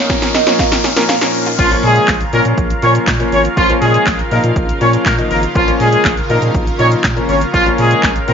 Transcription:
Already playing: A#2 A#3 C#4 D#4 C#5 F5, riser
0.10 F3 A#3 C#4 A#4, kick, snare, shaker
0.22 snare, closed hi-hat, shaker
0.34 D#5, snare, open hi-hat, shaker
0.47 F3 A#3 C#4 A#4 C#5, snare, closed hi-hat, shaker
0.59 F5, kick, snare, shaker
0.72 snare, closed hi-hat, shaker
0.84 C#4, snare, open hi-hat, shaker
0.96 F3 A#3 C#4 A#4, snare, closed hi-hat, shaker
1.09 F5, snare, shaker
1.21 F3 A#3 C#4 A#4 C#5, snare, closed hi-hat, shaker
1.34 open hi-hat, shaker
1.46 F4, closed hi-hat, shaker
1.59 A#1 C#3 F3 A#3 C#4 F4 A#4 F5, kick, crash, shaker
1.71 F3 A#3 C#4, closed hi-hat, shaker
1.83 A#2 G#3 G#4, open hi-hat, shaker
1.96 closed hi-hat, shaker
2.08 A#1, kick, snare, clap, shaker
2.21 closed hi-hat, shaker
2.33 A#2 F3 A#3 C#4 A#4, open hi-hat, shaker
2.45 A#2, closed hi-hat, shaker
2.58 A#1, kick, shaker
2.70 closed hi-hat, shaker
2.82 A#2 F3 A#3 C#4 C#5, open hi-hat, shaker
2.95 closed hi-hat, shaker
3.07 A#2, kick, snare, clap, shaker
3.20 F3 A#3 C#4, closed hi-hat, shaker
3.32 G#1 C#4 C#5, open hi-hat, shaker
3.45 closed hi-hat, shaker
3.57 A#1 F3 A#3 C#4 F4, kick, shaker
3.69 F3 A#3 C#4, closed hi-hat, shaker
3.82 A#2 G#3 G#4, open hi-hat, shaker
3.94 closed hi-hat, shaker
4.07 A#1, kick, snare, clap, shaker
4.19 closed hi-hat, shaker
4.31 A#2 F3 A#3 D#4 A#4, open hi-hat, shaker
4.44 A#2, closed hi-hat, shaker
4.56 A#1, kick, shaker
4.69 closed hi-hat, shaker
4.81 A#2 F3 A#3 C#4 C#5, open hi-hat, shaker
4.93 closed hi-hat, shaker
5.06 A#2 A#3 A#4, kick, snare, clap, shaker
5.18 F3 A#3 D#4, closed hi-hat, shaker
5.31 G#1 A#3 A#4, open hi-hat, shaker
5.43 closed hi-hat, shaker
5.55 A#1 F3 A#3 C#4 F4, kick, shaker
5.67 F3 A#3 C#4, closed hi-hat, shaker
5.80 A#2 G#3 G#4, open hi-hat, shaker
5.92 closed hi-hat, shaker
6.05 A#1, kick, snare, clap, shaker
6.17 closed hi-hat, shaker
6.30 A#2 F3 A#3 D#4 A#4, open hi-hat, shaker
6.42 A#2, closed hi-hat, shaker
6.54 A#1, kick, shaker
6.67 closed hi-hat, shaker
6.79 A#2 F3 A#3 C#4 D#4 C#5, open hi-hat, shaker
6.92 closed hi-hat, shaker
7.04 A#2, kick, snare, clap, shaker
7.16 F3 A#3 C#4, closed hi-hat, shaker
7.29 G#1 C#4 C#5, open hi-hat, shaker
7.41 closed hi-hat, shaker
7.53 A#1 F3 A#3 C#4 F4, kick, shaker
7.66 F3 A#3 C#4, closed hi-hat, shaker
7.78 A#2 G#3 G#4, open hi-hat, shaker
7.91 closed hi-hat, shaker
8.03 A#1, kick, snare, clap, shaker
8.16 closed hi-hat, shaker
8.28 A#2 F3 A#3 C4 A#4, open hi-hat, shaker

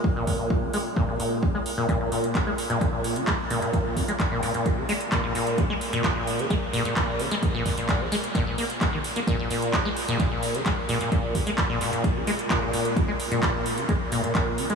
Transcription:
0.04 kick
0.16 A#2
0.27 A#2, kick, open hi-hat
0.39 A#2
0.50 kick
0.63 C#3
0.73 G#3, open hi-hat
0.96 A#2, kick
1.08 A#2
1.20 A#2, open hi-hat
1.43 C#3, kick
1.55 G#3
1.66 open hi-hat
1.78 A#2
1.89 A#2, kick, closed hi-hat
2.01 A#2
2.12 A#2, open hi-hat
2.24 closed hi-hat
2.35 C#3, kick, clap, closed hi-hat
2.47 G#3
2.58 open hi-hat
2.70 A#2, closed hi-hat
2.81 A#2, kick, closed hi-hat
2.93 A#2
3.04 open hi-hat
3.16 C#3, closed hi-hat
3.27 G#3, kick, clap, closed hi-hat
3.50 A#2, open hi-hat
3.62 A#2, closed hi-hat
3.73 A#2, kick, closed hi-hat
3.97 C#3, kick, open hi-hat
4.08 G#3, closed hi-hat
4.20 kick, clap, closed hi-hat
4.31 A#2
4.43 A#2, open hi-hat
4.54 A#2, closed hi-hat
4.66 kick, closed hi-hat
4.78 C#3
4.89 G#3, open hi-hat
5.01 closed hi-hat
5.12 A#2, kick, clap, closed hi-hat
5.24 A#2
5.35 A#2, open hi-hat
5.47 closed hi-hat
5.58 C#3, kick, closed hi-hat
5.70 G#3
5.81 open hi-hat
5.93 A#2, closed hi-hat
6.04 A#2, kick, clap, closed hi-hat
6.16 A#2
6.27 open hi-hat
6.39 C#3, closed hi-hat
6.50 G#3, kick, closed hi-hat
6.73 A#2, open hi-hat
6.85 A#2, closed hi-hat
6.96 A#2, kick, clap, closed hi-hat
7.19 C#3, open hi-hat
7.31 G#3, closed hi-hat
7.43 kick, closed hi-hat
7.54 A#2
7.66 A#2, kick, open hi-hat
7.78 A#2, closed hi-hat
7.89 kick, clap, closed hi-hat
8.01 C#3
8.12 G#3, open hi-hat
8.24 closed hi-hat
8.35 A#2, kick, clap, closed hi-hat
8.47 A#2
8.58 A#3, open hi-hat
8.70 closed hi-hat
8.81 A#2, kick, clap, closed hi-hat
8.93 D#3
9.04 open hi-hat
9.16 A#3, closed hi-hat
9.27 A#2, kick, closed hi-hat
9.39 A#2
9.50 A#2, open hi-hat
9.62 closed hi-hat
9.73 C#3, kick, clap, closed hi-hat
9.85 G#3
9.97 open hi-hat
10.08 A#2, closed hi-hat
10.20 A#2, kick, closed hi-hat
10.31 A#2
10.43 open hi-hat
10.54 C#3, closed hi-hat
10.66 G#3, kick, clap, closed hi-hat
10.89 A#2, open hi-hat
11.01 A#2, closed hi-hat
11.12 A#2, kick, closed hi-hat
11.35 C#3, kick, open hi-hat
11.47 G#3, closed hi-hat
11.58 kick, clap, closed hi-hat
11.70 A#2
11.81 A#2, open hi-hat
11.93 A#2, closed hi-hat
12.04 kick, closed hi-hat
12.16 C#3
12.27 G#3, open hi-hat
12.39 closed hi-hat
12.50 A#2, kick, clap, closed hi-hat
12.62 A#2
12.73 A#2, open hi-hat
12.85 closed hi-hat
12.96 C#3, kick, closed hi-hat
13.08 G#3
13.20 open hi-hat
13.31 A#2, closed hi-hat
13.43 A#2, kick, clap, closed hi-hat
13.55 A#2
13.66 open hi-hat
13.78 C#3, closed hi-hat
13.89 G#3, kick, closed hi-hat
14.12 A#2, open hi-hat
14.24 A#2, closed hi-hat
14.35 A#2, kick, clap, closed hi-hat
14.58 C#3, open hi-hat
14.70 G#3, closed hi-hat

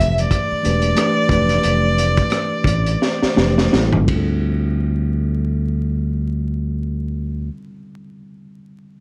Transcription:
Already playing: E3 A3 D4 G4 B4 E5
0.00 F1, closed hi-hat
0.12 E5
0.18 D5, closed hi-hat
0.31 kick, closed hi-hat
0.52 muted fingered electric bass stroke
0.62 E1 E3 A3 D4 G4, closed hi-hat
0.66 B4
0.82 closed hi-hat
0.94 E3 A3 D4 G4, cross-stick, closed hi-hat
0.98 B4
1.28 F1 E3 A3 D4 G4 B4, kick, closed hi-hat
1.49 cross-stick, closed hi-hat
1.63 F1, closed hi-hat
1.98 closed hi-hat
2.17 kick, closed hi-hat
2.30 cross-stick, closed hi-hat
2.64 A1, kick, closed hi-hat
2.86 closed hi-hat
3.02 snare
3.22 muted fingered electric bass stroke, snare
3.34 F1 E3 A3 D4 G4 B4, snare
3.58 snare
3.70 A1 G3 A#3 C#4 E4 A4, snare
3.93 G1, mid tom
4.01 D3 G3
4.08 D2 C4, kick, ride
4.12 F4
4.16 A4

